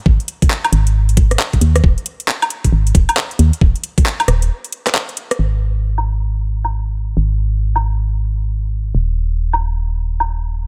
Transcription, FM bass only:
0, 0, Header, 1, 2, 480
1, 0, Start_track
1, 0, Tempo, 444444
1, 64, Time_signature, 4, 2, 24, 8
1, 11525, End_track
2, 0, Start_track
2, 0, Title_t, "FM bass"
2, 0, Program_c, 0, 39
2, 63, Note_on_c, 0, 32, 98
2, 194, Note_off_c, 0, 32, 0
2, 782, Note_on_c, 0, 32, 92
2, 1483, Note_off_c, 0, 32, 0
2, 1743, Note_on_c, 0, 39, 84
2, 1958, Note_off_c, 0, 39, 0
2, 1983, Note_on_c, 0, 27, 96
2, 2114, Note_off_c, 0, 27, 0
2, 2942, Note_on_c, 0, 32, 87
2, 3158, Note_off_c, 0, 32, 0
2, 3183, Note_on_c, 0, 27, 101
2, 3314, Note_off_c, 0, 27, 0
2, 3662, Note_on_c, 0, 39, 86
2, 3793, Note_off_c, 0, 39, 0
2, 3902, Note_on_c, 0, 27, 102
2, 4033, Note_off_c, 0, 27, 0
2, 4622, Note_on_c, 0, 27, 91
2, 4863, Note_off_c, 0, 27, 0
2, 5823, Note_on_c, 0, 32, 84
2, 7726, Note_off_c, 0, 32, 0
2, 7742, Note_on_c, 0, 32, 88
2, 9645, Note_off_c, 0, 32, 0
2, 9661, Note_on_c, 0, 27, 88
2, 11525, Note_off_c, 0, 27, 0
2, 11525, End_track
0, 0, End_of_file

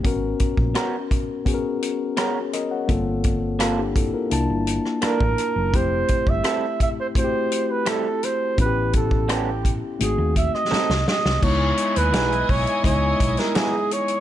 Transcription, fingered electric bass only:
0, 0, Header, 1, 3, 480
1, 0, Start_track
1, 0, Tempo, 710900
1, 30, Time_signature, 4, 2, 24, 8
1, 9589, End_track
2, 0, Start_track
2, 0, Title_t, "Fingered electric bass"
2, 0, Program_c, 0, 33
2, 34, Note_on_c, 0, 32, 85
2, 222, Note_off_c, 0, 32, 0
2, 390, Note_on_c, 0, 34, 68
2, 485, Note_off_c, 0, 34, 0
2, 1954, Note_on_c, 0, 31, 93
2, 2766, Note_off_c, 0, 31, 0
2, 2914, Note_on_c, 0, 36, 90
2, 3008, Note_off_c, 0, 36, 0
2, 3036, Note_on_c, 0, 31, 74
2, 3224, Note_off_c, 0, 31, 0
2, 3516, Note_on_c, 0, 33, 74
2, 3610, Note_off_c, 0, 33, 0
2, 3753, Note_on_c, 0, 30, 82
2, 3876, Note_off_c, 0, 30, 0
2, 3876, Note_on_c, 0, 29, 90
2, 4064, Note_off_c, 0, 29, 0
2, 4234, Note_on_c, 0, 31, 61
2, 4328, Note_off_c, 0, 31, 0
2, 5796, Note_on_c, 0, 33, 83
2, 6608, Note_off_c, 0, 33, 0
2, 6758, Note_on_c, 0, 32, 89
2, 6851, Note_off_c, 0, 32, 0
2, 6875, Note_on_c, 0, 39, 84
2, 7064, Note_off_c, 0, 39, 0
2, 7357, Note_on_c, 0, 36, 75
2, 7450, Note_off_c, 0, 36, 0
2, 7598, Note_on_c, 0, 36, 80
2, 7691, Note_off_c, 0, 36, 0
2, 7716, Note_on_c, 0, 37, 81
2, 7904, Note_off_c, 0, 37, 0
2, 8080, Note_on_c, 0, 39, 67
2, 8201, Note_off_c, 0, 39, 0
2, 8201, Note_on_c, 0, 35, 78
2, 8387, Note_off_c, 0, 35, 0
2, 8436, Note_on_c, 0, 35, 75
2, 8530, Note_off_c, 0, 35, 0
2, 8674, Note_on_c, 0, 37, 84
2, 8863, Note_off_c, 0, 37, 0
2, 8917, Note_on_c, 0, 35, 74
2, 9010, Note_off_c, 0, 35, 0
2, 9589, End_track
3, 0, Start_track
3, 0, Title_t, "Muted fingered electric bass strokes"
3, 3394, Note_on_c, 9, 29, 38
3, 3462, Note_off_c, 9, 29, 0
3, 7236, Note_on_c, 9, 29, 39
3, 7304, Note_off_c, 9, 29, 0
3, 9589, End_track
0, 0, End_of_file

